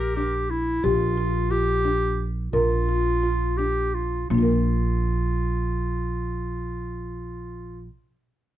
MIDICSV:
0, 0, Header, 1, 5, 480
1, 0, Start_track
1, 0, Key_signature, -2, "major"
1, 0, Tempo, 680272
1, 596, Time_signature, 5, 3, 24, 8
1, 2284, Tempo, 725514
1, 5812, End_track
2, 0, Start_track
2, 0, Title_t, "Soprano saxophone"
2, 0, Program_c, 0, 64
2, 0, Note_on_c, 0, 70, 96
2, 362, Note_off_c, 0, 70, 0
2, 5812, End_track
3, 0, Start_track
3, 0, Title_t, "Clarinet"
3, 0, Program_c, 1, 71
3, 0, Note_on_c, 1, 67, 113
3, 91, Note_off_c, 1, 67, 0
3, 112, Note_on_c, 1, 67, 89
3, 353, Note_on_c, 1, 64, 97
3, 364, Note_off_c, 1, 67, 0
3, 590, Note_on_c, 1, 65, 101
3, 600, Note_off_c, 1, 64, 0
3, 1061, Note_on_c, 1, 67, 108
3, 1072, Note_off_c, 1, 65, 0
3, 1593, Note_off_c, 1, 67, 0
3, 1788, Note_on_c, 1, 65, 104
3, 2507, Note_on_c, 1, 67, 100
3, 2517, Note_off_c, 1, 65, 0
3, 2750, Note_on_c, 1, 65, 87
3, 2760, Note_off_c, 1, 67, 0
3, 2986, Note_off_c, 1, 65, 0
3, 2990, Note_on_c, 1, 65, 77
3, 5348, Note_off_c, 1, 65, 0
3, 5812, End_track
4, 0, Start_track
4, 0, Title_t, "Marimba"
4, 0, Program_c, 2, 12
4, 120, Note_on_c, 2, 62, 88
4, 375, Note_off_c, 2, 62, 0
4, 591, Note_on_c, 2, 67, 96
4, 720, Note_off_c, 2, 67, 0
4, 829, Note_on_c, 2, 65, 76
4, 958, Note_off_c, 2, 65, 0
4, 1065, Note_on_c, 2, 65, 81
4, 1196, Note_off_c, 2, 65, 0
4, 1305, Note_on_c, 2, 62, 90
4, 1567, Note_off_c, 2, 62, 0
4, 1788, Note_on_c, 2, 70, 100
4, 1921, Note_off_c, 2, 70, 0
4, 2037, Note_on_c, 2, 65, 74
4, 2170, Note_off_c, 2, 65, 0
4, 2282, Note_on_c, 2, 65, 81
4, 2409, Note_off_c, 2, 65, 0
4, 2518, Note_on_c, 2, 62, 85
4, 2773, Note_off_c, 2, 62, 0
4, 2989, Note_on_c, 2, 58, 72
4, 3017, Note_on_c, 2, 62, 72
4, 3042, Note_on_c, 2, 65, 76
4, 3069, Note_on_c, 2, 70, 68
4, 5347, Note_off_c, 2, 58, 0
4, 5374, Note_off_c, 2, 62, 0
4, 5400, Note_off_c, 2, 65, 0
4, 5427, Note_off_c, 2, 70, 0
4, 5812, End_track
5, 0, Start_track
5, 0, Title_t, "Upright bass"
5, 0, Program_c, 3, 32
5, 0, Note_on_c, 3, 34, 78
5, 569, Note_off_c, 3, 34, 0
5, 591, Note_on_c, 3, 34, 87
5, 1766, Note_off_c, 3, 34, 0
5, 1787, Note_on_c, 3, 34, 81
5, 2965, Note_off_c, 3, 34, 0
5, 2989, Note_on_c, 3, 34, 97
5, 5346, Note_off_c, 3, 34, 0
5, 5812, End_track
0, 0, End_of_file